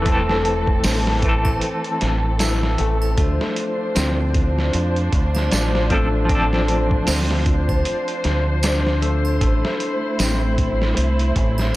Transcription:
0.00 0.81 E1 medium
0.00 3.14 E3 medium
0.00 1.17 E3 medium
0.00 0.72 C4 medium
0.00 3.14 C4 medium
0.00 1.89 E4 medium
0.00 3.14 A4 medium
0.05 2.78 A3 medium
0.05 1.19 A3 medium
0.05 1.20 C4 medium
0.05 kick loud
0.05 closed hi-hat medium
0.12 1.22 A4 loud
0.29 snare soft
0.45 closed hi-hat medium
0.67 kick medium
0.84 1.59 A1 medium
0.84 3.84 C4 medium
0.84 snare loud
0.84 open hi-hat medium
0.84 tambourine medium
1.07 snare medium
1.19 3.14 E3 medium
1.19 3.16 A3 medium
1.19 kick medium
1.19 closed hi-hat medium
1.25 3.17 C4 medium
1.25 3.19 A4 medium
1.45 kick medium
1.45 triangle medium
1.61 closed hi-hat medium
1.84 closed hi-hat soft
2.01 2.76 A1 medium
2.01 snare medium
2.01 closed hi-hat medium
2.39 5.01 E4 medium
2.39 snare loud
2.39 closed hi-hat medium
2.39 tambourine medium
2.63 snare soft
2.78 3.14 A1 medium
2.78 3.17 A3 medium
2.78 closed hi-hat medium
3.02 triangle medium
3.17 3.38 D2 loud
3.17 9.38 F3 medium
3.17 5.90 A3 medium
3.17 9.38 D4 medium
3.17 11.76 C5 medium
3.17 kick loud
3.17 closed hi-hat medium
3.41 snare soft
3.56 closed hi-hat medium
3.95 4.71 D2 loud
3.95 6.95 C4 medium
3.95 snare loud
3.95 closed hi-hat medium
3.95 tambourine medium
4.34 kick medium
4.34 closed hi-hat medium
4.59 snare soft
4.73 5.09 F2 medium
4.73 closed hi-hat medium
4.96 closed hi-hat soft
5.13 5.48 D2 medium
5.13 kick loud
5.13 closed hi-hat medium
5.35 snare soft
5.35 triangle medium
5.51 7.05 A1 medium
5.51 8.31 D4 medium
5.51 snare loud
5.51 closed hi-hat medium
5.51 tambourine medium
5.75 snare medium
5.89 6.06 F3 medium
5.89 6.29 A3 medium
5.89 6.06 C4 medium
5.89 6.07 D4 medium
5.89 kick medium
5.89 closed hi-hat medium
5.94 6.08 A4 medium
6.25 7.40 F3 medium
6.25 7.42 C4 medium
6.29 9.01 A3 medium
6.29 7.44 D4 medium
6.29 kick loud
6.29 closed hi-hat medium
6.35 7.45 A4 loud
6.53 snare soft
6.68 closed hi-hat medium
6.91 kick medium
7.07 7.83 D2 loud
7.07 10.07 C4 medium
7.07 snare loud
7.07 open hi-hat medium
7.07 tambourine medium
7.31 snare soft
7.46 kick medium
7.46 closed hi-hat medium
7.69 kick medium
7.69 triangle medium
7.85 closed hi-hat medium
8.08 closed hi-hat soft
8.24 9.39 D2 medium
8.24 snare medium
8.24 closed hi-hat medium
8.63 11.43 D4 medium
8.63 snare loud
8.63 closed hi-hat medium
8.63 tambourine medium
8.87 snare soft
9.02 9.40 A3 medium
9.02 closed hi-hat medium
9.25 triangle medium
9.40 9.61 A1 medium
9.40 11.76 A3 medium
9.40 11.76 E4 medium
9.40 kick loud
9.40 closed hi-hat medium
9.65 snare soft
9.80 closed hi-hat medium
10.19 10.94 A1 loud
10.19 11.76 C4 medium
10.19 snare loud
10.19 closed hi-hat medium
10.19 tambourine medium
10.58 kick medium
10.58 closed hi-hat medium
10.82 snare soft
10.97 11.32 C2 medium
10.97 closed hi-hat medium
11.19 closed hi-hat soft
11.36 11.71 A1 medium
11.36 kick medium
11.36 closed hi-hat medium
11.58 snare soft
11.58 triangle medium

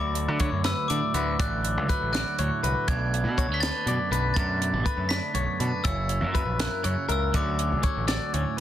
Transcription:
0.00 0.28 D2 loud
0.00 1.37 D2 medium
0.00 0.40 F#3 medium
0.00 0.14 A3 medium
0.00 0.65 F#4 medium
0.00 0.40 D5 medium
0.00 0.67 D6 medium
0.14 0.89 A3 medium
0.14 closed hi-hat medium
0.28 0.49 D3 medium
0.40 1.88 D3 medium
0.40 1.39 F#3 medium
0.40 0.64 C#5 medium
0.40 kick medium
0.40 closed hi-hat medium
0.52 0.73 F#2 medium
0.64 1.16 F#4 medium
0.64 0.89 B4 medium
0.64 0.91 E6 loud
0.64 snare loud
0.64 closed hi-hat medium
0.88 1.39 A2 medium
0.88 1.00 D3 medium
0.88 1.40 A3 medium
0.88 1.15 D5 medium
0.88 1.35 D6 medium
0.88 closed hi-hat medium
1.14 1.35 D2 loud
1.14 1.41 F#4 medium
1.14 1.40 B4 medium
1.14 closed hi-hat medium
1.38 1.77 A1 loud
1.38 2.88 D2 medium
1.38 1.90 F#3 medium
1.38 1.63 A3 medium
1.38 2.15 F#4 medium
1.38 1.89 D5 medium
1.38 1.86 F#6 loud
1.38 kick loud
1.38 closed hi-hat medium
1.63 2.40 A3 medium
1.63 closed hi-hat medium
1.77 1.87 C#2 medium
1.89 3.38 D3 medium
1.89 2.90 F#3 medium
1.89 2.13 B4 medium
1.89 2.12 F#6 medium
1.89 kick medium
1.89 closed hi-hat medium
2.02 2.22 A1 medium
2.13 2.64 F#4 medium
2.13 2.38 D5 medium
2.13 2.65 F#6 loud
2.13 snare loud
2.13 closed hi-hat medium
2.39 2.49 D2 medium
2.39 2.89 A2 medium
2.39 2.90 A3 medium
2.39 2.63 C#5 medium
2.39 closed hi-hat medium
2.63 2.74 C2 medium
2.63 2.91 F#4 medium
2.63 2.88 B4 medium
2.63 closed hi-hat medium
2.88 3.26 B1 loud
2.88 3.38 B2 medium
2.88 3.39 A3 medium
2.88 3.14 B3 medium
2.88 3.65 D4 medium
2.88 3.38 D5 medium
2.88 3.34 G#6 loud
2.88 kick loud
2.88 closed hi-hat loud
3.14 3.88 B3 medium
3.14 closed hi-hat medium
3.24 3.45 B2 loud
3.38 4.82 D3 medium
3.38 3.52 F#3 soft
3.38 3.63 C#5 medium
3.38 kick medium
3.38 closed hi-hat medium
3.48 3.70 D2 loud
3.48 4.35 A3 medium
3.54 3.62 B6 medium
3.60 3.87 B4 medium
3.60 4.33 A6 loud
3.60 snare loud
3.60 closed hi-hat loud
3.66 4.13 D4 medium
3.86 4.35 F#2 medium
3.86 3.97 B2 medium
3.86 4.12 D5 medium
3.86 closed hi-hat medium
3.90 4.35 B3 medium
4.11 4.32 B1 medium
4.11 4.37 D4 medium
4.11 4.37 B4 medium
4.11 closed hi-hat medium
4.34 4.74 F#2 loud
4.34 4.86 B2 medium
4.34 4.60 A3 medium
4.34 4.61 B3 medium
4.34 4.85 D5 medium
4.34 4.81 A6 medium
4.34 kick loud
4.34 closed hi-hat medium
4.39 5.08 D4 medium
4.61 4.74 A3 medium
4.61 closed hi-hat medium
4.73 4.84 A1 loud
4.73 5.33 B3 medium
4.84 5.84 D3 medium
4.84 5.81 A3 medium
4.84 5.11 B4 medium
4.84 kick medium
4.84 closed hi-hat medium
4.97 5.19 F#2 medium
5.09 5.60 D4 medium
5.09 5.34 D5 medium
5.09 5.87 B6 medium
5.09 snare loud
5.09 closed hi-hat medium
5.33 5.46 B1 medium
5.33 5.81 F#2 medium
5.33 5.82 B3 medium
5.33 5.60 C#5 medium
5.33 closed hi-hat medium
5.60 5.71 B2 medium
5.60 5.85 D4 medium
5.60 5.85 B4 medium
5.60 closed hi-hat medium
5.83 6.22 F#1 loud
5.83 7.30 F#2 medium
5.83 6.31 A#3 medium
5.83 6.09 C#4 medium
5.83 6.58 E4 medium
5.83 6.34 C#5 medium
5.83 6.55 E6 loud
5.83 kick loud
5.83 closed hi-hat medium
6.09 6.83 C#4 medium
6.09 closed hi-hat medium
6.21 6.42 F#2 loud
6.32 7.33 F#3 medium
6.32 7.30 A#3 soft
6.32 6.60 B4 medium
6.32 kick medium
6.32 closed hi-hat medium
6.45 6.67 A#1 medium
6.59 7.07 E4 medium
6.59 6.84 A#4 medium
6.59 7.11 F#6 medium
6.59 snare loud
6.59 closed hi-hat loud
6.83 6.95 F#2 medium
6.83 7.30 C#3 medium
6.83 7.33 C#4 medium
6.83 7.08 C#5 medium
6.83 closed hi-hat medium
7.08 7.30 C#2 medium
7.08 7.31 E4 medium
7.08 7.35 A#4 medium
7.08 7.36 E6 medium
7.08 closed hi-hat medium
7.32 8.60 D2 medium
7.32 7.74 D2 loud
7.32 7.82 F#3 medium
7.32 7.58 C#4 medium
7.32 8.08 F#4 medium
7.32 7.83 D5 medium
7.32 8.55 D6 medium
7.32 kick loud
7.32 closed hi-hat loud
7.59 8.33 C#4 medium
7.59 closed hi-hat medium
7.72 7.82 C#2 loud
7.83 8.60 D3 medium
7.83 8.60 F#3 medium
7.83 8.07 C#5 medium
7.83 kick medium
7.83 closed hi-hat medium
7.97 8.18 A1 medium
8.08 8.58 F#4 medium
8.08 8.33 D5 medium
8.08 snare loud
8.08 closed hi-hat medium
8.33 8.44 D2 medium
8.33 8.60 A2 medium
8.33 8.60 C#4 medium
8.33 8.57 C#5 medium
8.33 closed hi-hat medium
8.57 8.60 B4 medium

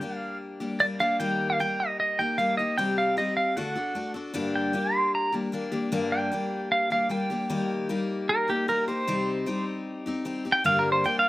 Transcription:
0.00 0.61 G3 medium
0.00 0.60 A#3 soft
0.00 0.60 D4 medium
0.00 0.60 G4 medium
0.00 0.17 G5 medium
0.17 0.37 F5 medium
0.60 0.78 G3 soft
0.60 0.79 A#3 soft
0.60 0.79 D4 medium
0.60 0.80 G4 medium
0.79 0.99 G3 soft
0.79 1.00 A#3 medium
0.79 0.99 D4 medium
0.79 0.98 G4 medium
0.79 0.86 D5 medium
1.00 1.19 G3 soft
1.00 1.19 A#3 soft
1.00 1.20 D4 soft
1.00 1.19 G4 medium
1.00 1.20 F5 medium
1.20 1.59 D#3 medium
1.20 1.58 G3 medium
1.20 1.59 A#3 medium
1.20 1.59 D#4 medium
1.20 1.60 G4 medium
1.20 1.47 G5 loud
1.50 1.60 F5 medium
1.60 2.18 G3 medium
1.60 2.19 A#3 medium
1.60 2.19 D#4 medium
1.60 2.18 G4 medium
1.60 1.80 G5 medium
1.80 1.99 D#5 medium
2.00 2.19 D#5 medium
2.19 2.38 A#3 soft
2.19 2.38 D#4 soft
2.19 2.38 G4 soft
2.19 2.37 G5 medium
2.38 2.58 G3 soft
2.38 2.58 A#3 medium
2.38 2.58 D#4 medium
2.38 2.58 G4 medium
2.38 2.56 F5 medium
2.57 2.78 A#3 soft
2.57 2.78 D#4 soft
2.57 2.78 G4 medium
2.57 2.76 D#5 medium
2.78 3.17 C3 medium
2.78 3.16 G3 medium
2.78 3.16 C4 medium
2.78 3.17 D#4 medium
2.78 3.17 G4 medium
2.78 2.96 G5 medium
2.98 3.16 F5 medium
3.17 3.56 G3 medium
3.17 3.57 C4 medium
3.17 3.57 D#4 medium
3.17 3.57 G4 medium
3.17 3.36 D#5 medium
3.37 3.57 F5 medium
3.57 3.76 D3 medium
3.57 3.76 A3 medium
3.57 3.76 D4 medium
3.57 3.75 F#4 medium
3.57 3.74 A4 medium
3.57 4.12 F#5 medium
3.75 3.94 D4 soft
3.75 3.95 F#4 soft
3.75 3.95 A4 medium
3.95 4.15 A3 medium
3.95 4.15 D4 medium
3.95 4.14 F#4 medium
3.95 4.13 A4 medium
4.14 4.33 D4 soft
4.14 4.34 F#4 medium
4.14 4.34 A4 medium
4.34 4.74 G2 medium
4.34 4.74 D3 medium
4.34 4.73 G3 medium
4.34 4.73 A#3 medium
4.34 4.73 D4 loud
4.34 4.74 G4 medium
4.56 4.94 G5 medium
4.73 5.34 G3 medium
4.73 5.34 A#3 medium
4.73 5.32 D4 medium
4.73 5.32 G4 medium
4.94 5.13 C6 medium
5.15 5.33 A#5 medium
5.32 5.51 G3 soft
5.32 5.52 A#3 soft
5.32 5.53 D4 soft
5.32 5.53 G4 soft
5.52 5.72 G3 medium
5.52 5.72 A#3 medium
5.52 5.71 D4 medium
5.52 5.70 G4 medium
5.72 5.91 G3 soft
5.72 5.91 A#3 medium
5.72 5.91 D4 medium
5.72 5.91 G4 medium
5.92 6.32 G2 medium
5.92 6.32 D3 medium
5.92 6.31 G3 medium
5.92 6.32 A#3 medium
5.92 6.32 D4 medium
5.92 6.33 G4 medium
6.12 6.70 G5 medium
6.32 6.92 G3 medium
6.32 6.90 A#3 medium
6.32 6.90 D4 medium
6.32 6.90 G4 medium
6.72 6.91 F5 medium
6.90 7.08 G3 soft
6.90 7.09 A#3 soft
6.90 7.10 D4 soft
6.90 7.10 G4 medium
6.90 7.11 F5 medium
7.09 7.30 G3 medium
7.09 7.30 A#3 medium
7.09 7.30 D4 medium
7.09 7.29 G4 medium
7.09 7.87 G5 loud
7.30 7.49 G3 soft
7.30 7.49 A#3 soft
7.30 7.50 D4 medium
7.30 7.49 G4 medium
7.50 7.89 D#3 medium
7.50 7.89 G3 medium
7.50 7.89 A#3 medium
7.50 7.90 D#4 medium
7.50 7.90 G4 medium
7.89 8.68 G3 medium
7.89 8.49 A#3 medium
7.89 8.48 D#4 medium
7.89 8.47 G4 medium
8.29 8.48 A#4 medium
8.48 8.67 A#3 soft
8.48 8.68 D#4 soft
8.48 8.68 G4 medium
8.68 8.88 G3 medium
8.68 8.88 A#3 medium
8.68 8.87 D#4 medium
8.68 8.86 G4 medium
8.68 8.88 A#4 medium
8.88 9.08 A#3 soft
8.88 9.07 D#4 medium
8.88 9.08 G4 medium
8.88 9.64 C5 medium
9.07 9.47 C3 medium
9.07 9.46 G3 medium
9.07 9.46 C4 medium
9.07 9.47 D#4 medium
9.07 9.48 G4 medium
9.46 10.25 G3 medium
9.46 10.06 C4 medium
9.46 10.06 D#4 medium
9.46 10.05 G4 medium
10.06 10.24 C4 medium
10.06 10.25 D#4 medium
10.06 10.25 G4 medium
10.25 10.45 G3 medium
10.25 10.45 C4 medium
10.25 10.45 D#4 medium
10.25 10.44 G4 medium
10.45 10.64 C4 soft
10.45 10.65 D#4 medium
10.45 10.64 G4 medium
10.52 10.65 G5 medium
10.64 11.04 G2 medium
10.64 11.04 D3 medium
10.64 11.04 G3 medium
10.64 11.04 A#3 medium
10.64 11.04 D4 medium
10.64 11.05 G4 medium
10.64 10.78 F5 medium
10.79 10.91 A#4 medium
10.92 11.04 C5 medium
11.04 11.29 G3 medium
11.04 11.29 A#3 medium
11.04 11.29 D4 medium
11.04 11.29 G4 medium
11.04 11.18 G5 medium
11.19 11.29 F5 medium

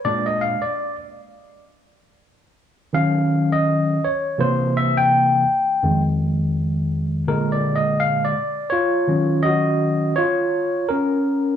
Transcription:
0.05 0.55 A#2 medium
0.05 0.55 G#3 soft
0.05 0.55 D4 medium
0.05 0.26 D5 loud
0.26 0.42 D#5 medium
0.41 0.63 F5 loud
0.62 0.95 D5 medium
2.93 3.98 D#3 medium
2.93 3.98 F#3 medium
2.93 3.99 C#4 medium
2.93 3.53 F5 loud
3.52 4.05 D#5 medium
4.04 4.41 C#5 medium
4.38 5.43 C3 medium
4.38 5.43 E3 medium
4.38 5.43 A#3 medium
4.38 4.77 C5 loud
4.77 4.97 E5 loud
4.97 6.01 G5 loud
5.83 7.24 F2 medium
5.83 7.24 D#3 medium
5.83 7.24 G#3 medium
7.28 8.32 A#2 medium
7.28 8.32 D3 medium
7.28 8.33 G#3 medium
7.28 7.50 A#4 medium
7.52 7.77 D5 medium
7.76 8.01 D#5 medium
8.00 8.25 F5 loud
8.25 8.69 D5 medium
8.70 9.41 F4 medium
8.70 9.46 C#5 loud
9.07 10.12 D#3 medium
9.07 10.13 F#3 soft
9.07 10.13 C#4 medium
9.43 10.13 F#4 medium
9.43 10.18 D#5 loud
10.16 10.86 F4 medium
10.16 10.91 C#5 loud
10.89 11.56 C#4 medium
10.89 11.56 A#4 medium

